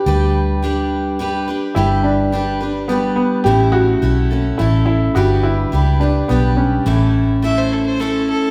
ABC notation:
X:1
M:3/4
L:1/16
Q:1/4=106
K:Glyd
V:1 name="Fiddle"
z12 | z12 | z12 | z12 |
z4 e =c A c A2 A2 |]
V:2 name="Upright piano"
G6 z6 | E2 D6 B,2 B,2 | G2 F6 E2 E2 | F2 E4 D2 B,2 C2- |
C8- C2 z2 |]
V:3 name="Steel-string acoustic guitar"
[G,DGB]4 [G,DGB]4 [G,DGB]2 [DGB]2 | [G,DGB]4 [G,DGB]2 [DGB]2 [G,DGB]4 | [A,,E,A,CEA]4 [A,CEA]2 [A,CEA]2 [A,CEA]4 | [G,DGB]4 [G,DGB]2 [DGB]2 [G,DGB]4 |
[A,,E,A,CEA]4 [A,CEA]4 [A,CEA]4 |]
V:4 name="Fingered electric bass" clef=bass
D,,12 | G,,,12 | A,,,4 B,,,4 A,,,4 | G,,,4 C,,4 B,,,4 |
A,,,12 |]